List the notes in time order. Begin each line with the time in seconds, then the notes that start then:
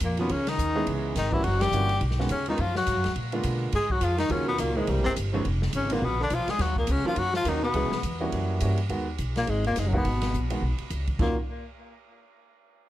0.00 F2 A#2, kick, hi-hat pedal, ride
0.05 A#3
0.17 B2 D#3 F#3 A#3 B3 C#4 F4, ride
0.29 C#2 C#3 C#4, kick, ride
0.47 D#3 D#4, snare, ride
0.58 D#2, kick, hi-hat pedal
0.75 E3 G#3 B3 C#4 G#4
0.87 C#2, kick, ride
1.15 G#1 D#3 D#4, kick, snare, hi-hat pedal, ride
1.31 E3 G3 A#3 C#4 E4 F#4, kick
1.44 F#1 F#3 F#4, kick, ride
1.60 G3 G4, snare, ride
1.72 G1 E3 G3 A#3 C#4 F#4, hi-hat pedal
1.89 ride
2.01 B1, kick, ride
2.11 snare
2.19 D#3 G#3 B3 C#4 F#4, snare
2.29 D#2 C#3 C#4, kick, hi-hat pedal, ride
2.46 D#3 G#3 B3 C#4 D#4 F4, ride
2.58 F#2 F3 F4, kick, ride
2.75 F#3 F#4, snare
2.87 G#2, kick, hi-hat pedal, ride
2.97 F#2
3.04 D#2, snare, ride
3.16 A#2, kick, ride
3.32 D3 G#3 A#3 B3 F4, ride
3.43 B2, kick, hi-hat pedal, ride
3.72 G#2 G#3 G#4, kick, ride
3.90 F#3 F#4, kick
4.01 F2 F3 F4, kick, hi-hat pedal, ride
4.17 D#3 D#4, snare, ride
4.30 D#2 C#3 D#3 F#3 A#3 C#4 F4, kick, ride
4.46 B2 B3
4.58 C#2 A#2 A#3, kick, hi-hat pedal, ride
4.76 G#2 E3 G#3 A#3 C4 A#4
4.87 C2 G2 G3, kick, ride
4.97 A#1
5.04 G1 C3 C4
5.16 G1, kick, hi-hat pedal, ride
5.33 D#3 F3 G#3 B3 C#4
5.45 F1, kick, ride
5.62 snare
5.73 G#1 C#3 C#4, kick, hi-hat pedal, ride
5.90 A#2 D3 G#3 A#3 B3 F4, ride
6.02 A#1 B2 B3, kick
6.20 D3 D4
6.30 B1 F3, kick, hi-hat pedal, ride
6.34 F4
6.47 G#3 G#4, muted upright bass stroke, snare, ride
6.59 D#2 F#3 F#4, kick, snare, ride
6.76 A#2 A#3, kick
6.87 C#2 C#3, hi-hat pedal, ride
6.91 C#4
7.03 D#3 F3 F#3 A#3 C#4 F4, muted upright bass stroke
7.08 F4
7.16 F#2 F#3 F#4, kick, ride
7.33 F3 F4, snare
7.45 D#2 D#3 F#3 A#3 C#4 D#4, kick, hi-hat pedal, ride
7.62 B2 B3
7.74 C#2 E3 G#3 B3 C#4 G#4, kick, ride
7.90 muted upright bass stroke, snare
8.03 E2, kick, hi-hat pedal, ride
8.20 E3 G3 A#3 C#4 F#4
8.32 F#2, kick, ride
8.60 G2 E3 G3 A#3 C#4 F#4, kick, hi-hat pedal, ride
8.77 ride
8.89 D#2 D#3 G#3 B3 F#4, kick, ride
9.18 B1, kick, hi-hat pedal, ride
9.36 A#2 A#3, snare, ride
9.47 G#1 G#2 G#3, kick, ride
9.64 A#2 A#3, ride
9.76 F#1 G#2 G#3, kick, snare, hi-hat pedal, ride
9.86 F#2 F#3
9.93 B2 D#3 G#3 B3 F#4, kick
9.98 B3
10.05 G#1, kick, ride
10.22 snare, ride
10.34 A#1, kick, hi-hat pedal
10.50 D#3 G#3 B3 F#4, ride
10.62 B1, kick
10.78 ride
10.90 C#2, kick, hi-hat pedal, ride
11.07 kick, ride
11.19 D#2 A#2 D#3 F#3 A#3 C#4 F4, kick, china